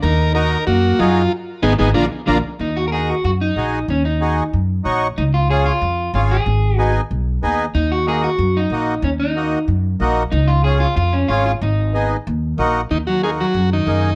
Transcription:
0.03 D#2 D#4 A#4
0.35 D#4 F#4 A#4
0.67 F#2 A#3 F#4
0.99 F#2 F#3 D#4 F4 F#4 G#4
1.62 G#1 D#3 G#3 B3 D#4 G#4
1.78 G#1 D#3 G#3 B3 D#4 G#4
1.94 A#1 D3 F3 A#3 D4 F4 A#4
2.26 A#1 D3 F3 A#3 D4 F4 A#4
2.59 D#2 D#4
2.77 F#4
2.88 A#4
2.92 D#4 F#4 G#4 A#4
3.10 F#4
3.24 F#2 F#4
3.41 D#4
3.56 A#1 D#4 F#4 G#4
3.88 D#2 C#4
4.05 D#4
4.21 D#4 F#4 G#4
4.53 F#2
4.84 A#1 D#4 F#4 C#5
5.18 C#2 D#4
5.34 F4
5.50 C#4 F4 G#4
5.66 F4
5.82 F2
6.14 G#1 C#4 F4 G#4
6.31 G#4
6.46 G#1
6.76 B3 D#4 F#4 G#4
7.11 B1
7.43 D#2 B3 D#4 G#4
7.74 D#2 D#4
7.92 F#4
8.07 A#3 D#4 F#4 G#4
8.24 F#4
8.38 F#2
8.57 D#4
8.70 A#1 A#3 D#4 F#4
9.02 D#2 C#4
9.20 D#4
9.36 A#3 D#4 F#4
9.68 F#2
10.00 A#1 A#3 D#4 F#4
10.32 C#2 D#4
10.48 F4
10.64 C#4 F4 G#4
10.80 F4
10.97 F2 F4
11.13 C#4
11.28 G#1 C#4 F4 G#4
11.46 F4
11.61 G#1 D#4
11.94 B3 D#4 G#4
12.27 D#2
12.58 A#1 A#3 D#4 F#4
12.90 D#2 D#3 D#4
13.07 F#3 F#4
13.23 A#3 D#4 F#4 G#4
13.41 F#3 F#4
13.54 F#2
13.73 D#3 D#4
13.87 F#2 A#3 D#4 G#4

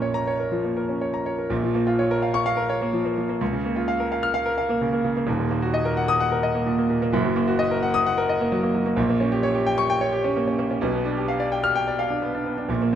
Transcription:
Already playing: A#1 A#2 A#3 C#4 A#4
0.02 C#5
0.14 A#5
0.27 C#5
0.40 A#4
0.52 F3
0.64 A#3
0.77 A#4
0.89 C#4
1.01 C#5
1.14 A#5
1.26 C#5
1.39 A#4
1.50 A#1 A#2
1.63 F3
1.74 A#3
1.87 F4
1.99 C#5
2.11 A#4
2.22 F5
2.34 C#6
2.46 F5
2.57 A#4
2.69 C#5
2.81 A#3
2.93 F3
3.05 A#3
3.17 F3
3.29 A#3
3.41 C#2
3.53 C#3
3.65 A#3
3.76 F4
3.88 F5
4.00 A#4
4.12 F5
4.23 F6
4.34 F5
4.46 A#4
4.58 F5
4.69 A#3
4.81 C#3
4.93 A#3
5.04 C#3
5.17 A#3
5.27 D#1 D#2
5.39 A#2
5.51 A#3
5.62 F#4
5.74 D#5
5.85 A#4
5.97 F#5
6.08 D#6
6.20 F#5
6.32 A#4
6.43 D#5
6.55 A#3
6.66 A#2
6.78 A#3
6.90 A#2
7.02 A#3
7.13 F#1 F#2
7.24 F#3
7.36 A#3
7.48 F#4
7.59 D#5
7.71 A#4
7.83 F#5
7.94 D#6
8.06 F#5
8.18 A#4
8.29 D#5
8.41 A#3
8.52 F#3
8.63 A#3
8.74 F#3
8.86 A#3
8.96 A#1 A#2
9.09 A#3
9.20 C#4
9.32 G4
9.43 C#5
9.54 G4
9.66 G5
9.78 C#6
9.90 G5
10.01 C#5
10.13 G4
10.24 C#4
10.36 A#3
10.47 C#4
10.58 A#3
10.71 C#4
10.81 B1 B2
10.94 B3
11.05 D4
11.17 G4
11.28 F5
11.40 D5
11.52 G5
11.64 F6
11.75 G5
11.88 D5
11.99 F5
12.10 D4
12.22 B3
12.34 D4
12.46 B3
12.58 D4
12.68 A#1 A#2
12.82 A#3

